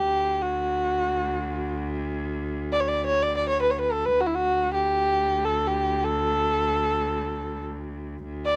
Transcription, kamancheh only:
Already playing: G4
0.42 F#4
2.73 D5
2.80 C#5
2.88 D5
3.06 C#5
3.23 D5
3.37 D5
3.49 C#5
3.62 B4
3.70 C#5
3.81 B4
3.92 A4
4.05 B4
4.20 F#4
4.26 E4
4.35 F#4
4.74 G4
5.45 A4
5.67 G4
6.04 A4
8.46 D5

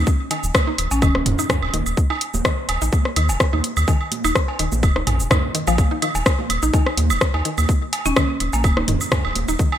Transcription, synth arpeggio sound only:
0.31 D#3
0.67 D#4
1.02 D#3
1.39 D#4
1.74 D#3
2.10 D#4
2.45 D#3
2.82 D#4
3.17 D#3
3.53 D#4
3.88 D#3
4.24 D#4
4.59 D#3
4.96 D#4
5.31 D#4
5.55 D#3
5.67 F3
5.91 D#4
6.02 D#3
6.63 D#4
6.74 D#3
7.34 D#4
7.45 D#3
8.06 D#4
8.17 D#3
8.77 D#4
8.88 D#3
9.48 D#4
9.59 D#3

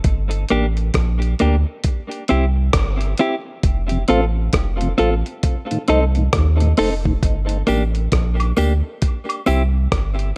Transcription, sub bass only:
0.05 G1
0.51 A1
0.95 A#1
1.42 D2
2.31 C2
2.75 G1
3.64 F1
4.10 A1
4.54 F1
5.00 A1
5.89 C2
6.34 D#2
6.79 F1
7.23 G1
7.69 A1
8.13 A#1
8.58 D2
9.48 C2
9.93 G1

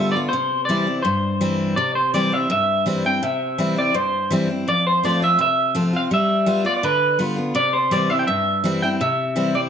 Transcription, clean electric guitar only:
Already playing: E5
0.12 D5
0.29 C5
0.65 D5
1.02 C5
1.76 D5
1.95 C5
2.14 D5
2.33 E5
2.51 E5
3.06 G5
3.23 E5
3.78 D5
3.95 C5
4.69 D5
4.87 C5
5.05 D5
5.24 E5
5.41 E5
5.96 F5
6.14 E5
6.66 D5
6.77 D5
6.84 B4
7.56 D5
7.73 C5
7.92 D5
8.10 E5
8.19 G5
8.27 E5
8.82 G5
9.01 E5
9.55 D5

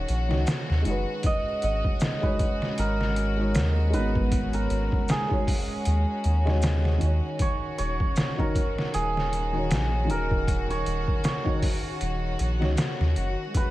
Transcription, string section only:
Already playing: D#3 C#4 F#4
1.24 G#3
7.40 D#3 F#4
13.54 G#3 C#4

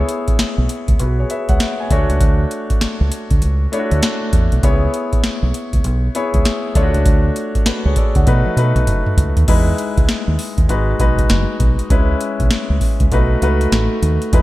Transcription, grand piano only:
Already playing: B3 E4 G#4 C#5
1.00 F#4 B4
1.20 G#4 C#5
1.31 B4 E5
1.49 C#5 F#5
1.61 B4 E5
1.80 C#5 G#5
1.91 A3 D4 F#4 C#5
3.72 A3 D4 E4 C#5
3.79 F#4
4.63 B3 E4 G#4 C#5
6.15 B3 E4 G#4 C#5
6.75 A3 D4 F4 C#5
6.83 F#4
7.67 F#4 B4
7.86 G#4 C#5
7.97 A4 D5
8.16 C#5 F#5
8.27 A3 D#4 F#4 B4
8.57 A3 D#4 F#4 B4
9.48 G#3 D#4 E4 B4
10.69 G#3 D#4 F#4 B4
11.00 G#3 D#4 F#4 B4
11.90 G#3 C#4 E4 B4
13.12 A3 D#4 F#4 B4
13.42 A3 D#4 F#4 B4
14.33 G#3 D#4 E4 B4

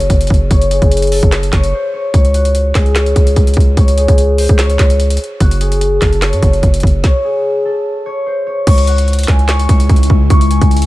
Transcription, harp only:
Already playing: F#4 A4 C#5
0.51 C#5
0.71 G#4
1.12 A4
1.53 C#5
1.73 C5
1.93 C#5
2.14 C#5
2.34 F#4
2.75 G#4
2.96 C#5
3.77 C#5
3.98 G#4
4.38 C5
4.59 C#5
5.41 F#4
5.61 G#4
6.02 A4
6.22 C#5
7.04 C#5
7.24 G#4
7.65 A4
8.06 C#5
8.26 C5
8.47 C#5
8.67 C#6
8.88 F#5
9.28 G#5
9.49 C#6
10.30 C#6
10.51 G#5

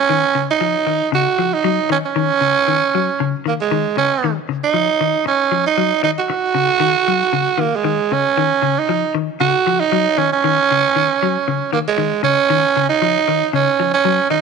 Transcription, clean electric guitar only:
0.10 D#3
0.35 C#3
0.61 F3
0.87 D#3
1.12 C#3
1.39 F3
1.64 F#3
1.90 D#3
2.16 D#3
2.41 C#3
2.68 D#3
2.95 F#3
3.20 C#3
3.46 D#3
3.71 D#3
3.97 C#3
4.24 D#3
4.49 C#3
4.74 F3
5.01 D#3
5.26 muted clean electric guitar stroke
5.52 F3
5.78 F#3
6.03 D#3
6.30 muted clean electric guitar stroke
6.55 C#3
6.80 D#3
7.08 F#3
7.33 C#3
7.58 D#3
7.84 D#3
8.12 C#3
8.38 D#3
8.62 C#3
8.89 F3
9.15 D#3
9.41 C#3
9.67 F3
9.92 F#3
10.18 D#3
10.44 D#3
10.71 C#3
10.96 D#3
11.23 F#3
11.48 C#3
11.73 D#3
11.98 D#3
12.23 C#3
12.50 D#3
12.77 C#3
13.02 F3
13.28 D#3
13.53 C#3
13.80 F3
14.05 F#3
14.31 D#3

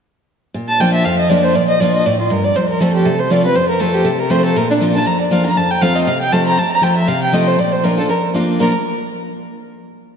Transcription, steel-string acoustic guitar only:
0.54 A#2
0.80 F3 A#3 D4 F4
1.05 F2
1.30 F3 A#3 D4 F4
1.55 A#2
1.80 F3 A#3 D4 F4
2.06 A2
2.30 G2
2.56 F2
2.80 F3 A3 C4 F4
3.05 C3
3.30 F3 A3 C4 F4
3.44 C4 F4
3.55 F2
3.80 F3 A3 C4 F4
4.05 C3
4.30 F3 A3 C4 F4
4.56 A#2
4.81 F3 A#3 D4 F4
4.94 D4 F4
5.06 F2
5.31 F3 A#3 D4 F4
5.45 D4 F4
5.57 F2
5.81 F3 A3 C4 F4
6.07 C3
6.32 F3 A3 C4 F4
6.57 F2
6.82 F3 A3 C4 F4
7.08 C3
7.33 F3 A3 C4 F4
7.59 A#2
7.84 F3 A#3 D4 F4
7.97 D4 F4
8.09 F2
8.34 F3 A#3 D4 F4
8.59 A#2 F3 A#3 D4 F4

